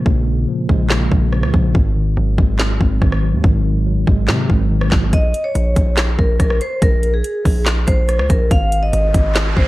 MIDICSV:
0, 0, Header, 1, 6, 480
1, 0, Start_track
1, 0, Tempo, 422535
1, 68, Time_signature, 4, 2, 24, 8
1, 10995, End_track
2, 0, Start_track
2, 0, Title_t, "Vibraphone"
2, 0, Program_c, 0, 11
2, 5833, Note_on_c, 0, 75, 96
2, 6169, Note_off_c, 0, 75, 0
2, 6181, Note_on_c, 0, 73, 90
2, 6748, Note_off_c, 0, 73, 0
2, 7027, Note_on_c, 0, 70, 69
2, 7230, Note_off_c, 0, 70, 0
2, 7267, Note_on_c, 0, 70, 79
2, 7470, Note_off_c, 0, 70, 0
2, 7515, Note_on_c, 0, 72, 86
2, 7714, Note_off_c, 0, 72, 0
2, 7754, Note_on_c, 0, 70, 103
2, 8089, Note_off_c, 0, 70, 0
2, 8108, Note_on_c, 0, 68, 78
2, 8672, Note_off_c, 0, 68, 0
2, 8940, Note_on_c, 0, 72, 83
2, 9395, Note_off_c, 0, 72, 0
2, 9429, Note_on_c, 0, 70, 79
2, 9631, Note_off_c, 0, 70, 0
2, 9675, Note_on_c, 0, 77, 108
2, 10010, Note_off_c, 0, 77, 0
2, 10028, Note_on_c, 0, 75, 93
2, 10592, Note_off_c, 0, 75, 0
2, 10866, Note_on_c, 0, 72, 79
2, 10995, Note_off_c, 0, 72, 0
2, 10995, End_track
3, 0, Start_track
3, 0, Title_t, "Tine electric piano"
3, 0, Program_c, 1, 4
3, 0, Control_c, 1, 64, 127
3, 0, Note_on_c, 1, 46, 74
3, 0, Note_on_c, 1, 49, 90
3, 0, Note_on_c, 1, 53, 73
3, 0, Note_on_c, 1, 56, 97
3, 0, Note_on_c, 1, 58, 90
3, 67, Note_off_c, 1, 46, 0
3, 67, Note_on_c, 1, 46, 92
3, 292, Note_off_c, 1, 49, 0
3, 306, Note_on_c, 1, 49, 72
3, 307, Note_off_c, 1, 58, 0
3, 534, Note_off_c, 1, 53, 0
3, 548, Note_on_c, 1, 53, 79
3, 787, Note_off_c, 1, 56, 0
3, 787, Note_on_c, 1, 56, 99
3, 1028, Note_on_c, 1, 58, 85
3, 1251, Note_off_c, 1, 46, 0
3, 1264, Note_on_c, 1, 46, 75
3, 1491, Note_off_c, 1, 49, 0
3, 1505, Note_on_c, 1, 49, 98
3, 1733, Note_off_c, 1, 53, 0
3, 1747, Note_on_c, 1, 53, 84
3, 1986, Note_off_c, 1, 46, 0
3, 1986, Note_off_c, 1, 49, 0
3, 1987, Note_off_c, 1, 53, 0
3, 1987, Note_off_c, 1, 56, 0
3, 1988, Note_off_c, 1, 58, 0
3, 1988, Note_on_c, 1, 44, 91
3, 2000, Control_c, 1, 64, 0
3, 2194, Control_c, 1, 64, 127
3, 2228, Note_on_c, 1, 51, 79
3, 2468, Note_on_c, 1, 54, 73
3, 2706, Note_on_c, 1, 56, 90
3, 2948, Note_on_c, 1, 60, 87
3, 3171, Note_off_c, 1, 44, 0
3, 3185, Note_on_c, 1, 44, 68
3, 3411, Note_off_c, 1, 51, 0
3, 3425, Note_on_c, 1, 51, 89
3, 3653, Note_off_c, 1, 54, 0
3, 3666, Note_on_c, 1, 54, 83
3, 3894, Note_off_c, 1, 44, 0
3, 3907, Note_off_c, 1, 56, 0
3, 3908, Note_on_c, 1, 44, 91
3, 4135, Note_off_c, 1, 51, 0
3, 4148, Note_off_c, 1, 60, 0
3, 4149, Note_on_c, 1, 51, 80
3, 4373, Note_off_c, 1, 54, 0
3, 4387, Note_on_c, 1, 54, 83
3, 4628, Note_on_c, 1, 56, 91
3, 4868, Note_on_c, 1, 60, 87
3, 5093, Note_off_c, 1, 44, 0
3, 5107, Note_on_c, 1, 44, 70
3, 5334, Note_off_c, 1, 51, 0
3, 5348, Note_on_c, 1, 51, 87
3, 5574, Note_off_c, 1, 54, 0
3, 5588, Note_on_c, 1, 54, 79
3, 5827, Note_off_c, 1, 44, 0
3, 5828, Note_off_c, 1, 51, 0
3, 5828, Note_off_c, 1, 54, 0
3, 5828, Note_off_c, 1, 56, 0
3, 5828, Note_off_c, 1, 60, 0
3, 5844, Control_c, 1, 64, 0
3, 6078, Control_c, 1, 64, 127
3, 9679, Control_c, 1, 64, 0
3, 10995, End_track
4, 0, Start_track
4, 0, Title_t, "808-style bass"
4, 0, Program_c, 2, 38
4, 67, Note_on_c, 2, 34, 110
4, 528, Note_off_c, 2, 34, 0
4, 787, Note_on_c, 2, 34, 107
4, 1248, Note_off_c, 2, 34, 0
4, 1267, Note_on_c, 2, 34, 104
4, 1626, Note_on_c, 2, 37, 98
4, 1643, Note_off_c, 2, 34, 0
4, 1741, Note_off_c, 2, 37, 0
4, 1747, Note_on_c, 2, 34, 107
4, 1978, Note_off_c, 2, 34, 0
4, 1987, Note_on_c, 2, 32, 115
4, 2448, Note_off_c, 2, 32, 0
4, 2466, Note_on_c, 2, 32, 105
4, 2697, Note_off_c, 2, 32, 0
4, 2707, Note_on_c, 2, 32, 107
4, 3168, Note_off_c, 2, 32, 0
4, 3188, Note_on_c, 2, 32, 103
4, 3418, Note_off_c, 2, 32, 0
4, 3427, Note_on_c, 2, 32, 108
4, 3787, Note_on_c, 2, 39, 100
4, 3804, Note_off_c, 2, 32, 0
4, 3901, Note_off_c, 2, 39, 0
4, 3908, Note_on_c, 2, 32, 112
4, 4599, Note_off_c, 2, 32, 0
4, 4627, Note_on_c, 2, 32, 107
4, 4868, Note_on_c, 2, 48, 99
4, 4885, Note_off_c, 2, 32, 0
4, 5096, Note_off_c, 2, 48, 0
4, 5108, Note_on_c, 2, 32, 107
4, 5569, Note_off_c, 2, 32, 0
4, 5588, Note_on_c, 2, 32, 102
4, 5818, Note_off_c, 2, 32, 0
4, 5828, Note_on_c, 2, 34, 115
4, 6058, Note_off_c, 2, 34, 0
4, 6307, Note_on_c, 2, 34, 105
4, 6538, Note_off_c, 2, 34, 0
4, 6547, Note_on_c, 2, 34, 106
4, 7008, Note_off_c, 2, 34, 0
4, 7029, Note_on_c, 2, 34, 100
4, 7259, Note_off_c, 2, 34, 0
4, 7267, Note_on_c, 2, 34, 107
4, 7498, Note_off_c, 2, 34, 0
4, 7747, Note_on_c, 2, 34, 116
4, 8208, Note_off_c, 2, 34, 0
4, 8467, Note_on_c, 2, 34, 105
4, 8928, Note_off_c, 2, 34, 0
4, 8949, Note_on_c, 2, 34, 108
4, 9307, Note_on_c, 2, 37, 103
4, 9324, Note_off_c, 2, 34, 0
4, 9421, Note_off_c, 2, 37, 0
4, 9427, Note_on_c, 2, 34, 105
4, 9658, Note_off_c, 2, 34, 0
4, 9667, Note_on_c, 2, 32, 114
4, 10128, Note_off_c, 2, 32, 0
4, 10147, Note_on_c, 2, 32, 103
4, 10378, Note_off_c, 2, 32, 0
4, 10387, Note_on_c, 2, 32, 105
4, 10848, Note_off_c, 2, 32, 0
4, 10868, Note_on_c, 2, 32, 105
4, 10995, Note_off_c, 2, 32, 0
4, 10995, End_track
5, 0, Start_track
5, 0, Title_t, "Riser"
5, 0, Program_c, 3, 103
5, 9667, Note_on_c, 3, 60, 84
5, 10995, Note_off_c, 3, 60, 0
5, 10995, End_track
6, 0, Start_track
6, 0, Title_t, "Drums"
6, 67, Note_on_c, 9, 36, 113
6, 180, Note_off_c, 9, 36, 0
6, 786, Note_on_c, 9, 36, 83
6, 900, Note_off_c, 9, 36, 0
6, 1024, Note_on_c, 9, 39, 96
6, 1026, Note_on_c, 9, 38, 125
6, 1137, Note_off_c, 9, 39, 0
6, 1140, Note_off_c, 9, 38, 0
6, 1268, Note_on_c, 9, 36, 84
6, 1381, Note_off_c, 9, 36, 0
6, 1506, Note_on_c, 9, 37, 67
6, 1620, Note_off_c, 9, 37, 0
6, 1627, Note_on_c, 9, 37, 94
6, 1740, Note_off_c, 9, 37, 0
6, 1747, Note_on_c, 9, 36, 97
6, 1860, Note_off_c, 9, 36, 0
6, 1987, Note_on_c, 9, 36, 110
6, 2100, Note_off_c, 9, 36, 0
6, 2707, Note_on_c, 9, 36, 89
6, 2820, Note_off_c, 9, 36, 0
6, 2945, Note_on_c, 9, 39, 101
6, 2948, Note_on_c, 9, 38, 122
6, 3058, Note_off_c, 9, 39, 0
6, 3061, Note_off_c, 9, 38, 0
6, 3188, Note_on_c, 9, 36, 83
6, 3302, Note_off_c, 9, 36, 0
6, 3427, Note_on_c, 9, 36, 91
6, 3427, Note_on_c, 9, 37, 66
6, 3540, Note_off_c, 9, 37, 0
6, 3541, Note_off_c, 9, 36, 0
6, 3548, Note_on_c, 9, 37, 93
6, 3661, Note_off_c, 9, 37, 0
6, 3908, Note_on_c, 9, 36, 115
6, 4021, Note_off_c, 9, 36, 0
6, 4627, Note_on_c, 9, 36, 87
6, 4741, Note_off_c, 9, 36, 0
6, 4865, Note_on_c, 9, 39, 96
6, 4868, Note_on_c, 9, 38, 122
6, 4978, Note_off_c, 9, 39, 0
6, 4981, Note_off_c, 9, 38, 0
6, 5109, Note_on_c, 9, 36, 81
6, 5222, Note_off_c, 9, 36, 0
6, 5468, Note_on_c, 9, 37, 94
6, 5582, Note_off_c, 9, 37, 0
6, 5584, Note_on_c, 9, 39, 78
6, 5587, Note_on_c, 9, 38, 99
6, 5588, Note_on_c, 9, 36, 97
6, 5698, Note_off_c, 9, 39, 0
6, 5701, Note_off_c, 9, 36, 0
6, 5701, Note_off_c, 9, 38, 0
6, 5828, Note_on_c, 9, 36, 115
6, 5828, Note_on_c, 9, 42, 83
6, 5941, Note_off_c, 9, 36, 0
6, 5942, Note_off_c, 9, 42, 0
6, 6068, Note_on_c, 9, 42, 73
6, 6182, Note_off_c, 9, 42, 0
6, 6308, Note_on_c, 9, 42, 71
6, 6421, Note_off_c, 9, 42, 0
6, 6547, Note_on_c, 9, 36, 88
6, 6547, Note_on_c, 9, 42, 86
6, 6661, Note_off_c, 9, 36, 0
6, 6661, Note_off_c, 9, 42, 0
6, 6785, Note_on_c, 9, 39, 97
6, 6787, Note_on_c, 9, 42, 82
6, 6788, Note_on_c, 9, 38, 124
6, 6898, Note_off_c, 9, 39, 0
6, 6901, Note_off_c, 9, 38, 0
6, 6901, Note_off_c, 9, 42, 0
6, 7029, Note_on_c, 9, 36, 82
6, 7142, Note_off_c, 9, 36, 0
6, 7267, Note_on_c, 9, 36, 91
6, 7267, Note_on_c, 9, 37, 68
6, 7268, Note_on_c, 9, 42, 78
6, 7381, Note_off_c, 9, 36, 0
6, 7381, Note_off_c, 9, 37, 0
6, 7381, Note_off_c, 9, 42, 0
6, 7388, Note_on_c, 9, 37, 94
6, 7501, Note_off_c, 9, 37, 0
6, 7507, Note_on_c, 9, 42, 70
6, 7621, Note_off_c, 9, 42, 0
6, 7747, Note_on_c, 9, 36, 116
6, 7748, Note_on_c, 9, 42, 83
6, 7861, Note_off_c, 9, 36, 0
6, 7861, Note_off_c, 9, 42, 0
6, 7987, Note_on_c, 9, 42, 71
6, 8101, Note_off_c, 9, 42, 0
6, 8228, Note_on_c, 9, 42, 80
6, 8341, Note_off_c, 9, 42, 0
6, 8467, Note_on_c, 9, 36, 87
6, 8467, Note_on_c, 9, 46, 64
6, 8580, Note_off_c, 9, 36, 0
6, 8581, Note_off_c, 9, 46, 0
6, 8704, Note_on_c, 9, 39, 95
6, 8707, Note_on_c, 9, 38, 123
6, 8707, Note_on_c, 9, 42, 83
6, 8818, Note_off_c, 9, 39, 0
6, 8820, Note_off_c, 9, 42, 0
6, 8821, Note_off_c, 9, 38, 0
6, 8947, Note_on_c, 9, 42, 86
6, 8948, Note_on_c, 9, 36, 87
6, 9061, Note_off_c, 9, 42, 0
6, 9062, Note_off_c, 9, 36, 0
6, 9187, Note_on_c, 9, 37, 69
6, 9187, Note_on_c, 9, 42, 80
6, 9301, Note_off_c, 9, 37, 0
6, 9301, Note_off_c, 9, 42, 0
6, 9307, Note_on_c, 9, 37, 99
6, 9421, Note_off_c, 9, 37, 0
6, 9427, Note_on_c, 9, 36, 97
6, 9427, Note_on_c, 9, 42, 72
6, 9541, Note_off_c, 9, 36, 0
6, 9541, Note_off_c, 9, 42, 0
6, 9667, Note_on_c, 9, 36, 110
6, 9667, Note_on_c, 9, 42, 83
6, 9781, Note_off_c, 9, 36, 0
6, 9781, Note_off_c, 9, 42, 0
6, 9907, Note_on_c, 9, 42, 73
6, 10021, Note_off_c, 9, 42, 0
6, 10147, Note_on_c, 9, 42, 77
6, 10261, Note_off_c, 9, 42, 0
6, 10387, Note_on_c, 9, 36, 87
6, 10388, Note_on_c, 9, 42, 88
6, 10500, Note_off_c, 9, 36, 0
6, 10501, Note_off_c, 9, 42, 0
6, 10625, Note_on_c, 9, 39, 99
6, 10627, Note_on_c, 9, 42, 81
6, 10628, Note_on_c, 9, 38, 121
6, 10738, Note_off_c, 9, 39, 0
6, 10741, Note_off_c, 9, 38, 0
6, 10741, Note_off_c, 9, 42, 0
6, 10868, Note_on_c, 9, 36, 84
6, 10982, Note_off_c, 9, 36, 0
6, 10995, End_track
0, 0, End_of_file